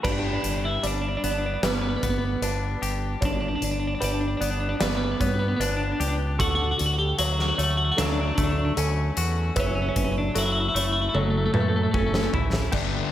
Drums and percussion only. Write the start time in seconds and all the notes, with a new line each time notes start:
0.05 kick, crash
0.44 closed hi-hat
0.84 closed hi-hat
1.24 closed hi-hat
1.63 snare, closed hi-hat
2.03 kick, closed hi-hat
2.42 closed hi-hat
2.83 closed hi-hat
3.22 kick, closed hi-hat
3.62 closed hi-hat
4.02 closed hi-hat
4.42 closed hi-hat
4.81 snare, closed hi-hat
5.21 kick, closed hi-hat
5.61 closed hi-hat
6.01 closed hi-hat
6.40 kick, closed hi-hat
6.79 closed hi-hat
7.19 closed hi-hat
7.39 snare
7.59 closed hi-hat
7.98 snare, closed hi-hat
8.38 kick, closed hi-hat
8.77 closed hi-hat
9.17 closed hi-hat
9.56 kick, closed hi-hat
9.96 kick, closed hi-hat
10.36 closed hi-hat
10.76 closed hi-hat
11.15 high tom
11.54 mid tom
11.94 kick
12.14 snare
12.34 floor tom
12.53 snare
12.72 kick, snare, crash